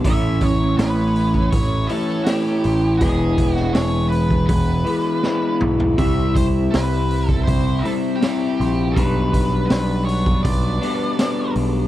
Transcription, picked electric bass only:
0.05 A1
0.78 A1
1.53 A1
2.65 A1
3.01 E1
3.76 E1
4.49 E1
5.62 B1
5.98 C2
6.75 C2
7.47 C2
8.60 A#1
8.97 B1
9.71 B1
10.45 B1
11.56 B1

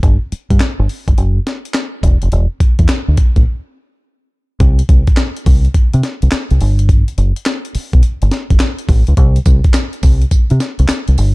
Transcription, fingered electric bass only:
0.03 G1
0.32 muted fingered electric bass stroke
0.51 G2
0.79 G1
1.08 G1
1.18 F#1
2.03 E1
2.22 F1
2.32 E1
2.61 muted fingered electric bass stroke
2.79 E2
3.08 D2
3.36 A1
4.60 C2
4.89 C2
5.47 C2
5.75 muted fingered electric bass stroke
5.94 C3
6.23 C2
6.32 muted fingered electric bass stroke
6.51 C2
6.61 G1
7.18 F#1
7.75 muted fingered electric bass stroke
7.94 B1
8.22 G1
8.51 F#1
8.89 A1
9.08 C#2
9.17 C2
9.46 C2
10.03 C2
10.32 muted fingered electric bass stroke
10.51 C3
10.79 C2
10.90 muted fingered electric bass stroke
11.08 C2
11.18 G1

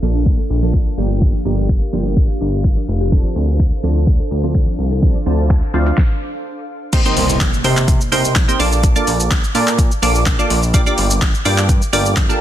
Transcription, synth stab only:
0.02 F3 A#3 D4 A4
0.62 F3 A#3 D4 A4
0.97 F3 A#3 D4 G4
1.45 F3 A#3 D4 G4
1.93 F3 A#3 D4 G4
3.12 F3 C4 D4 A4
3.83 F3 C4 D4 A4
4.43 F3 C4 D4 A4
5.02 F3 C4 D4 A4
5.26 F3 C4 D4 A4
5.74 F3 C4 D4 F4
6.93 A#3 C4 D#4 G4 C5
7.05 A#3 C4 D#4 G4 C5
7.64 A#3 C4 D#4 G4 C5
8.12 A#3 C4 D#4 G4 C5
8.48 A#3 C4 D#4 G4 C5
8.59 A#3 D4 F4 A4 D5
8.96 A#3 D4 F4 A4 D5
9.55 A#3 D4 F4 A4 D5
10.02 A#3 D4 F4 A4 D5
10.39 A#3 D4 F4 A4 D5
10.74 A#3 D4 F4 G4 D5
10.86 A#3 D4 F4 G4 D5
11.45 A#3 D4 F4 G4 D5
11.93 A#3 D4 F4 G4 D5
12.29 A#3 D4 F4 G4 A4

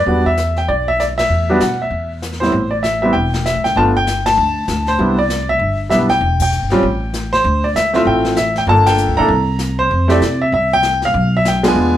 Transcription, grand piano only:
Already playing: D5
0.07 G3 B3 D4 F#4
0.26 E5
0.58 G5
0.69 D5
0.88 E5
1.00 D5
1.18 E5
1.49 G3 B3 D4 F#4
1.61 F#5
1.82 E5
2.40 A2 G3 B3 C4 E4 C5
2.71 D5
2.83 E5
3.02 G3 B3 C4 E4 E5
3.13 G5
3.46 E5
3.64 G5
3.76 A3 B3 D4 F4 A5
3.97 G5
4.26 A5
4.88 C5
4.99 G3 B3 D4 E4
5.19 D5
5.49 E5
5.89 G3 B3 D4 E4 E5
6.10 G5
6.42 G5
6.72 G3 C4 C#4 F4
7.33 C5
7.64 D5
7.76 E5
7.93 A3 C4 E4 F4 E5
8.07 G5
8.37 E5
8.58 G5
8.68 A#3 D4 F4 A4 A5
8.86 G5
9.17 A#3 D4 E4 A4 A#5
9.79 C5
10.08 A3 C4 E4 G4 D5
10.42 E5
10.54 E5
10.73 G5
11.05 F5
11.37 E5
11.48 G5
11.63 G#3 B3 D4 F4
11.68 G#5

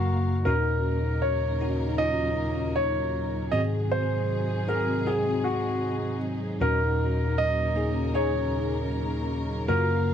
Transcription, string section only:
Already playing: C#3 F#3 A#3 A#4 F5
0.44 C#3 F#3 A#3 D#4 A#4
3.53 C3 G#3 D#4 G#4
6.61 C#3 A#3 A#4
9.68 A#3 F5

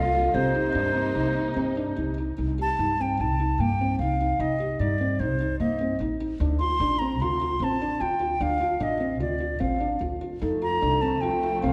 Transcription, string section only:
Already playing: G3 A#3 F4
0.34 C3 A#3 D#4
10.42 F3 A3 C4

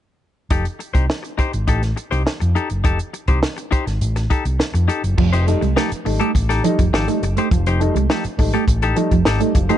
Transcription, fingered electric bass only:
0.51 F1
0.95 C2
1.39 muted fingered electric bass stroke
1.54 G#1
1.68 A1
2.12 C2
2.42 F2
2.71 F#1
2.85 F1
3.28 C2
3.73 muted fingered electric bass stroke
3.87 G#1
4.02 A1
4.45 C2
4.74 F2
5.04 F#1
5.18 F1
5.62 C2
5.92 muted fingered electric bass stroke
6.06 G#1
6.35 A1
6.79 F1
6.93 G#1
7.23 F#1
7.52 F1
7.95 C2
8.25 muted fingered electric bass stroke
8.39 G#1
8.68 A1
9.12 F1
9.26 G#1
9.55 F#1

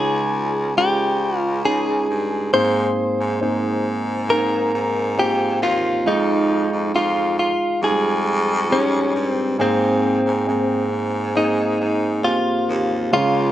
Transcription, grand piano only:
Already playing: C#3 G#3 C#4 D#4 F4
0.76 G#3 C#4 F4
1.64 C#4 D#4 G#4
2.53 G#2 A#3 C4 G#4
3.41 A#3 C4 D#4
4.29 A#3 C4 D#4
5.17 A#3 C4 F4
6.05 G#3 D#4 F4
6.94 G#3 D#4 F4
7.82 G3 D#4 F4
7.88 G#3
8.70 D#4 G4 G#4
9.58 G#2 A#3 C4 G#4
10.47 A#3 C4 G#4
11.35 A#3 C4 G#4
12.23 A#3 C4 G4
13.11 C#3 G#3 C#4 F4

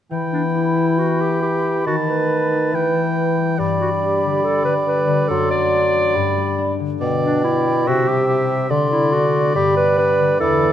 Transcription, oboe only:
0.12 G5
1.87 A5
2.75 G5
3.59 D5
7.00 D5
7.87 E5
8.70 D5
10.41 D5

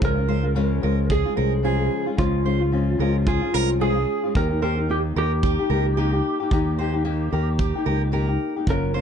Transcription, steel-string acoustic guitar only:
0.28 C5
0.83 A#4
1.10 G#4
1.37 A#4
1.65 G#4
2.45 C5
3.00 A#4
3.27 G#4
3.54 A#4
3.81 G#4
4.62 C5
5.16 A#4
5.43 G4
5.70 A#4
5.97 G4
6.79 C5
7.33 A#4
7.59 G4
7.86 A#4
8.13 A#4
8.94 C5

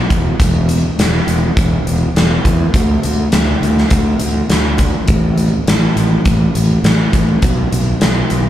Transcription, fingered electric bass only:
0.10 E1
0.40 E1
0.98 E1
1.27 E1
1.57 E1
1.84 E1
2.15 E1
2.45 E2
2.74 D2
3.04 D2
3.33 D2
3.62 D2
3.91 D2
4.21 D2
4.49 D2
5.08 A1
5.67 A1
5.96 A1
6.26 A1
6.55 A1
6.83 A1
7.14 A1
7.43 B1
7.72 B1
8.02 B1
8.31 B1

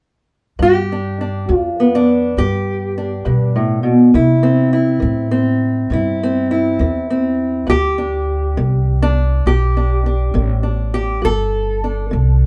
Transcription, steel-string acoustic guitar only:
0.59 G2 G4
0.92 D4
1.21 D4
1.49 D3
1.55 F4
1.80 B3
1.95 D4
2.38 G2 G4
2.98 D4
3.25 G2
3.56 A2
3.83 B2
4.14 C3 E4
4.43 C4
4.73 E4
5.00 E3
5.31 C4
5.92 C3 E4
6.23 C4
6.51 E4
6.81 E3
7.10 C4
7.67 G2 G4
7.98 D4
8.57 D3
9.02 D4
9.47 G2 G4
9.77 D4
10.06 D4
10.35 D3
10.63 D4
10.94 G4
11.22 G2 A4
11.84 D4
12.11 D3

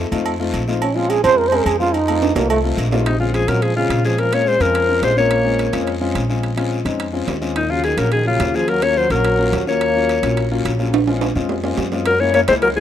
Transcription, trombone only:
Already playing: A3
0.82 C#4
0.95 F4
1.10 G#4
1.24 C5
1.38 A#4
1.48 C5
1.57 A#4
1.66 G#4
1.80 F4
1.94 D#4
2.36 A#3
2.50 A3
3.06 C3
3.19 C#3
3.34 F3
3.48 F#3
3.62 F3
3.77 C#3
4.05 F3
4.19 F3
4.33 A#3
4.48 G#3
4.61 F3
5.03 G#3
5.18 A#3
7.56 A#2
7.71 C#3
7.84 D#3
7.99 F#3
8.13 D#3
8.27 C#3
8.55 F3
8.69 F#3
8.84 A#3
8.98 F#3
9.11 F#3
9.68 A#3
12.06 F#3
12.20 A#3
12.34 A#3
12.48 G#3
12.62 F#3
12.76 E3

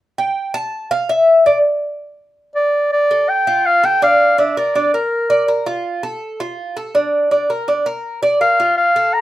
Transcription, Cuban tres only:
0.18 G5
0.54 A5
0.91 F5
1.09 E5
1.46 D5
3.11 A4
3.47 F4
3.83 A4
4.02 D4
4.38 D4
4.57 A#4
4.75 D4
4.94 A#4
5.30 D5
5.48 A#4
5.66 F4
6.03 A4
6.40 F4
6.77 A4
6.95 D4
7.31 D4
7.50 A#4
7.68 D4
7.86 A#4
8.23 D5
8.41 A#4
8.60 F4
8.96 A4

